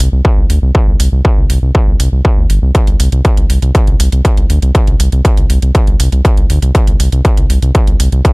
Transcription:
0.12 0.22 C2 medium
0.25 kick loud
0.37 0.47 C2 medium
0.50 0.59 D2 medium
0.50 open hi-hat medium
0.62 0.72 C2 loud
0.75 kick loud
0.87 0.97 C2 medium
1.00 1.09 C2 loud
1.00 open hi-hat loud
1.12 1.22 C2 medium
1.25 kick loud
1.37 1.47 C2 medium
1.50 1.59 C2 loud
1.50 open hi-hat loud
1.62 1.72 C2 medium
1.75 kick loud
1.87 1.97 C2 medium
2.00 2.09 C2 loud
2.00 open hi-hat loud
2.12 2.22 C2 medium
2.25 kick loud
2.37 2.47 D2 medium
2.50 2.59 G1 medium
2.50 open hi-hat medium
2.62 2.72 C2 medium
2.75 kick loud
2.75 closed hi-hat medium
2.87 2.97 C2 medium
2.87 closed hi-hat soft
3.00 3.09 C2 loud
3.00 open hi-hat loud
3.12 3.22 C2 medium
3.12 closed hi-hat soft
3.25 kick loud
3.25 closed hi-hat medium
3.37 3.47 C2 medium
3.37 closed hi-hat soft
3.50 3.59 C2 medium
3.50 open hi-hat medium
3.62 3.72 C2 medium
3.62 closed hi-hat soft
3.75 kick loud
3.75 closed hi-hat medium
3.87 3.97 C2 medium
3.87 closed hi-hat soft
4.00 4.09 C2 loud
4.00 open hi-hat loud
4.12 4.22 C2 medium
4.12 closed hi-hat soft
4.25 kick loud
4.25 closed hi-hat medium
4.37 4.47 C2 medium
4.37 closed hi-hat soft
4.50 4.59 D2 loud
4.50 open hi-hat medium
4.62 4.72 C2 medium
4.62 closed hi-hat soft
4.75 kick loud
4.75 closed hi-hat medium
4.87 4.97 C2 medium
4.87 closed hi-hat soft
5.00 5.09 C2 loud
5.00 open hi-hat loud
5.12 5.22 C2 medium
5.12 closed hi-hat soft
5.25 kick loud
5.25 closed hi-hat medium
5.37 5.47 C2 medium
5.37 closed hi-hat soft
5.50 5.59 C2 loud
5.50 open hi-hat medium
5.62 5.72 C2 medium
5.62 closed hi-hat soft
5.75 kick loud
5.75 closed hi-hat medium
5.87 5.97 C2 medium
5.87 closed hi-hat soft
6.00 6.09 C2 medium
6.00 open hi-hat loud
6.12 6.22 C2 medium
6.12 closed hi-hat soft
6.25 kick loud
6.25 closed hi-hat medium
6.37 6.47 C2 medium
6.37 closed hi-hat soft
6.50 6.59 D2 loud
6.50 open hi-hat medium
6.62 6.72 C2 loud
6.62 closed hi-hat soft
6.75 kick loud
6.75 closed hi-hat medium
6.87 6.97 C2 medium
6.87 closed hi-hat soft
7.00 7.09 C2 loud
7.00 open hi-hat medium
7.12 7.22 C2 medium
7.12 closed hi-hat soft
7.25 kick loud
7.25 closed hi-hat medium
7.37 7.47 C2 medium
7.37 closed hi-hat soft
7.50 7.59 C2 medium
7.50 open hi-hat medium
7.62 7.72 C2 medium
7.62 closed hi-hat soft
7.75 kick loud
7.75 closed hi-hat medium
7.87 7.97 C2 medium
7.87 closed hi-hat soft
8.00 8.09 C2 medium
8.00 open hi-hat loud
8.12 8.22 C2 medium
8.12 closed hi-hat soft
8.25 kick loud
8.25 closed hi-hat medium

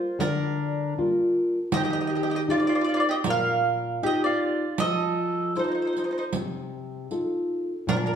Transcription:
0.00 0.17 F4 medium
0.00 0.18 C5 medium
0.19 0.94 D3 medium
0.19 0.93 D4 medium
0.19 0.92 A#4 medium
0.19 riq medium
0.98 1.58 G3 soft
0.98 1.59 A#3 soft
0.98 1.59 F4 medium
1.72 2.46 D#3 medium
1.72 1.81 D#5 loud
1.72 riq medium
1.76 1.82 G4 medium
1.83 1.89 G4 medium
1.83 1.90 D#5 medium
1.90 1.97 G4 medium
1.90 1.98 D#5 medium
2.00 2.06 G4 medium
2.00 2.06 D#5 medium
2.07 2.15 G4 medium
2.07 2.13 D#5 medium
2.15 2.21 G4 medium
2.15 2.20 D#5 medium
2.23 2.28 G4 medium
2.23 2.28 D#5 medium
2.30 2.34 G4 medium
2.30 2.35 D#5 medium
2.35 2.40 G4 medium
2.35 2.41 D#5 medium
2.48 3.09 D#4 medium
2.48 3.10 F4 soft
2.48 2.57 F4 medium
2.48 3.10 G4 medium
2.48 2.57 D5 medium
2.58 2.65 F4 medium
2.58 2.66 D5 medium
2.67 2.74 F4 medium
2.67 2.74 D5 medium
2.75 2.80 F4 medium
2.75 2.82 D5 medium
2.81 2.88 F4 medium
2.81 2.91 D5 medium
2.89 2.95 F4 medium
2.94 3.02 F4 medium
2.94 2.98 D5 medium
3.00 3.04 D5 medium
3.09 3.14 G4 medium
3.09 3.16 D#5 medium
3.24 4.00 A#2 medium
3.24 3.98 A#4 loud
3.24 riq medium
3.30 4.00 F5 loud
4.03 4.63 D#4 medium
4.03 4.64 F4 medium
4.03 4.22 G4 loud
4.03 4.64 G4 medium
4.03 4.24 D#5 loud
4.24 4.76 F4 medium
4.24 4.75 D5 medium
4.78 5.54 F3 medium
4.78 5.52 A4 medium
4.78 5.52 D#5 loud
4.78 riq medium
5.55 6.18 D#4 soft
5.55 5.65 D#4 medium
5.55 6.18 F4 soft
5.55 6.18 A4 soft
5.55 5.63 C5 medium
5.55 riq soft
5.64 5.70 C5 soft
5.68 5.73 D#4 soft
5.68 5.79 C5 soft
5.75 5.81 D#4 soft
5.82 5.90 D#4 soft
5.82 5.86 C5 soft
5.87 5.95 C5 soft
5.93 5.97 D#4 soft
5.93 riq soft
5.98 6.03 D#4 soft
5.98 6.03 C5 medium
6.04 6.10 D#4 soft
6.04 6.10 C5 medium
6.11 6.17 D#4 soft
6.11 6.16 C5 soft
6.18 6.24 D#4 medium
6.18 6.23 C5 medium
6.33 7.08 C3 medium
6.33 riq medium
7.11 7.73 D#4 soft
7.11 7.73 F4 soft
7.11 7.73 A4 medium
7.11 riq soft
7.87 8.16 A#2 medium
7.87 7.96 D4 medium
7.87 7.95 A#4 loud
7.87 riq medium
7.97 8.04 D4 medium
7.97 8.04 A#4 medium
8.06 8.12 D4 medium
8.06 8.12 A#4 medium

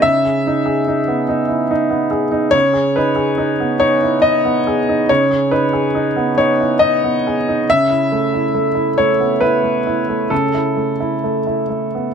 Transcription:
0.00 2.50 C#3 medium
0.00 0.17 D#4 medium
0.00 2.54 E5 loud
0.24 0.58 G#4 soft
0.47 0.80 D#4 soft
0.66 1.00 G#4 soft
0.88 1.21 D#4 soft
1.08 1.42 B3 soft
1.29 1.62 D#4 medium
1.49 1.70 E4 soft
1.71 2.04 D#4 medium
1.90 2.24 B3 soft
2.11 2.45 G#4 soft
2.32 2.54 D#4 medium
2.51 5.04 C#3 medium
2.51 2.95 C#5 loud
2.73 3.09 G#4 soft
2.96 3.31 D#4 soft
2.96 3.82 B4 medium
3.16 3.51 G#4 soft
3.38 3.73 D#4 medium
3.60 3.95 B3 soft
3.80 4.15 D#4 medium
3.80 4.23 C#5 medium
4.03 4.25 E4 soft
4.22 4.58 D#4 soft
4.22 5.08 D#5 medium
4.45 4.79 B3 soft
4.67 5.01 G#4 soft
4.89 5.23 D#4 soft
5.09 7.63 C#3 medium
5.09 5.52 C#5 medium
5.31 5.65 G#4 soft
5.51 5.86 D#4 soft
5.51 6.38 B4 medium
5.73 6.08 G#4 medium
5.95 6.29 D#4 medium
6.16 6.51 B3 soft
6.38 6.72 D#4 soft
6.38 6.81 C#5 medium
6.60 6.81 E4 soft
6.79 7.15 D#4 medium
6.79 7.66 D#5 medium
7.04 7.37 B3 soft
7.27 7.60 G#4 soft
7.48 7.68 D#4 soft
7.70 10.29 C#3 medium
7.70 8.98 E5 loud
7.90 8.23 E4 soft
8.12 8.45 A3 soft
8.34 8.67 E4 soft
8.55 8.88 A3 soft
8.75 9.10 E4 soft
8.98 9.33 A3 medium
8.98 9.41 C#5 medium
9.20 9.41 B3 soft
9.41 9.77 E4 soft
9.41 10.31 B4 medium
9.63 9.99 A3 soft
9.87 10.22 E4 soft
10.09 10.45 A3 soft
10.30 12.14 C#3 medium
10.30 12.14 A4 medium
10.54 10.92 E4 soft
10.77 11.15 A3 soft
11.00 11.39 E4 soft
11.24 11.62 A3 soft
11.47 11.85 E4 soft
11.69 12.08 A3 soft
11.95 12.14 B3 soft

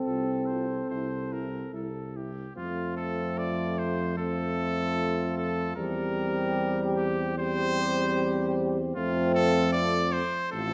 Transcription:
0.00 1.69 C4 medium
0.00 2.13 A4 medium
0.05 0.81 C2 medium
0.05 0.23 F4 soft
0.05 0.48 A4 medium
0.46 0.66 F4 soft
0.46 0.89 C5 medium
0.90 1.64 C2 medium
0.90 1.07 E4 soft
0.90 1.34 C5 medium
1.32 1.48 E4 soft
1.32 1.74 A#4 medium
1.73 2.48 C2 medium
1.73 1.89 E4 soft
1.73 2.18 A4 soft
2.16 2.32 E4 soft
2.16 2.56 G4 medium
2.56 5.73 F2 medium
2.56 4.14 A3 medium
2.56 4.14 C4 medium
2.56 2.95 F4 medium
2.56 4.14 F4 medium
2.97 3.39 A4 medium
3.38 3.80 D5 medium
3.79 4.17 C5 medium
4.18 5.74 A3 medium
4.18 5.74 C4 medium
4.18 5.74 F4 medium
4.18 5.35 A4 loud
5.37 5.76 A4 medium
5.76 8.92 E2 medium
5.76 7.35 G3 medium
5.76 7.35 C4 medium
5.76 7.36 G4 medium
5.76 6.80 A#4 medium
6.97 7.37 G4 medium
7.38 8.78 G3 medium
7.38 8.93 C4 medium
7.38 8.79 G4 medium
7.38 8.55 C5 loud
8.95 10.23 F2 medium
8.95 10.22 A3 medium
8.95 10.23 C4 loud
8.95 10.22 F4 medium
8.95 9.32 F4 loud
9.35 9.72 A4 loud
9.73 10.14 D5 loud
10.13 10.51 C5 loud
10.52 10.73 A1 medium
10.52 10.73 A3 medium
10.52 10.73 C4 loud
10.52 10.73 F4 medium
10.52 10.73 A4 loud

